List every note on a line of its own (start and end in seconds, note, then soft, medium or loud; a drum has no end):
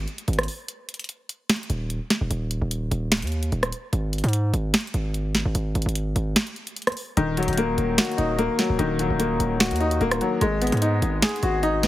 0.08 closed hi-hat soft
0.18 closed hi-hat medium
0.28 0.47 G#1 loud
0.28 closed hi-hat medium
0.33 closed hi-hat medium
0.39 cross-stick medium
0.39 closed hi-hat soft
0.43 closed hi-hat soft
0.48 open hi-hat medium
0.68 closed hi-hat medium
0.89 closed hi-hat medium
0.94 closed hi-hat medium
0.99 closed hi-hat medium
1.04 closed hi-hat soft
1.09 closed hi-hat medium
1.29 closed hi-hat medium
1.49 finger snap medium
1.49 snare loud
1.49 closed hi-hat medium
1.56 closed hi-hat medium
1.63 closed hi-hat medium
1.70 2.00 D#1 loud
1.70 closed hi-hat medium
1.90 closed hi-hat medium
2.10 snare medium
2.10 closed hi-hat medium
2.21 2.30 D#1 loud
2.31 2.60 D#1 loud
2.31 closed hi-hat medium
2.51 closed hi-hat medium
2.62 2.90 D#1 loud
2.71 closed hi-hat medium
2.91 3.24 D#1 loud
2.91 closed hi-hat medium
3.12 finger snap medium
3.12 snare loud
3.12 closed hi-hat soft
3.17 closed hi-hat medium
3.22 3.51 D#2 loud
3.22 closed hi-hat medium
3.27 closed hi-hat medium
3.32 closed hi-hat soft
3.43 closed hi-hat medium
3.52 3.72 D#1 loud
3.52 closed hi-hat soft
3.63 cross-stick medium
3.63 closed hi-hat medium
3.72 closed hi-hat medium
3.93 4.22 G#1 loud
3.93 closed hi-hat medium
4.13 closed hi-hat medium
4.18 closed hi-hat medium
4.24 4.52 G#2 loud
4.24 closed hi-hat medium
4.29 closed hi-hat soft
4.33 closed hi-hat medium
4.53 4.73 G#1 loud
4.53 closed hi-hat medium
4.74 finger snap medium
4.74 snare loud
4.74 closed hi-hat medium
4.81 closed hi-hat medium
4.87 closed hi-hat medium
4.94 5.43 G#1 loud
4.94 closed hi-hat medium
5.14 closed hi-hat medium
5.35 snare medium
5.35 closed hi-hat medium
5.45 5.54 G#1 loud
5.55 5.74 G#1 loud
5.55 closed hi-hat medium
5.75 5.85 G#1 loud
5.75 closed hi-hat medium
5.82 6.15 G#1 loud
5.82 closed hi-hat medium
5.89 closed hi-hat medium
5.95 closed hi-hat medium
6.16 6.35 G#1 loud
6.16 closed hi-hat medium
6.36 finger snap medium
6.36 snare loud
6.36 closed hi-hat medium
6.47 closed hi-hat medium
6.56 closed hi-hat soft
6.67 closed hi-hat medium
6.76 closed hi-hat medium
6.82 closed hi-hat medium
6.87 cross-stick medium
6.87 closed hi-hat medium
6.92 closed hi-hat soft
6.97 open hi-hat medium
7.17 7.47 D#1 loud
7.17 8.18 D#3 loud
7.17 closed hi-hat medium
7.37 8.39 F#3 medium
7.37 closed hi-hat medium
7.43 closed hi-hat medium
7.48 7.77 D#1 loud
7.48 closed hi-hat medium
7.53 closed hi-hat medium
7.58 8.37 A#3 medium
7.58 closed hi-hat medium
7.78 7.97 D#1 loud
7.78 closed hi-hat medium
7.98 8.99 F#4 medium
7.98 finger snap medium
7.98 snare loud
7.98 closed hi-hat medium
8.05 closed hi-hat medium
8.12 closed hi-hat medium
8.18 8.48 D#1 loud
8.18 9.19 D#4 medium
8.18 closed hi-hat medium
8.39 9.18 A#3 loud
8.39 closed hi-hat medium
8.59 8.98 F#3 medium
8.59 snare medium
8.59 closed hi-hat medium
8.70 8.79 D#1 loud
8.79 9.09 D#1 loud
8.79 9.80 D#3 medium
8.79 closed hi-hat medium
8.99 10.01 F#3 medium
8.99 closed hi-hat medium
9.10 9.39 D#1 loud
9.19 10.00 A#3 medium
9.19 closed hi-hat medium
9.40 9.72 D#1 loud
9.40 closed hi-hat medium
9.60 10.41 F#4 medium
9.60 finger snap medium
9.60 snare loud
9.60 closed hi-hat medium
9.66 closed hi-hat medium
9.71 9.99 D#2 loud
9.71 closed hi-hat medium
9.76 closed hi-hat medium
9.80 10.41 D#4 medium
9.80 closed hi-hat soft
9.91 closed hi-hat medium
10.01 10.20 D#1 loud
10.01 10.42 A#3 medium
10.01 closed hi-hat soft
10.11 cross-stick loud
10.11 closed hi-hat medium
10.21 10.41 F#3 medium
10.21 closed hi-hat medium
10.41 10.71 G#1 loud
10.41 11.43 G#3 loud
10.41 closed hi-hat medium
10.62 11.63 B3 medium
10.62 closed hi-hat medium
10.67 closed hi-hat medium
10.72 11.01 G#2 loud
10.72 closed hi-hat medium
10.77 closed hi-hat soft
10.82 11.61 D#4 medium
10.82 closed hi-hat medium
11.02 11.22 G#1 loud
11.02 closed hi-hat medium
11.22 11.88 G#4 medium
11.22 finger snap medium
11.22 snare loud
11.22 closed hi-hat medium
11.29 closed hi-hat medium
11.36 closed hi-hat medium
11.43 11.88 G#1 loud
11.43 11.88 F#4 medium
11.43 closed hi-hat medium
11.63 11.88 D#4 loud
11.63 closed hi-hat medium
11.83 11.88 B3 medium
11.83 snare medium
11.83 closed hi-hat medium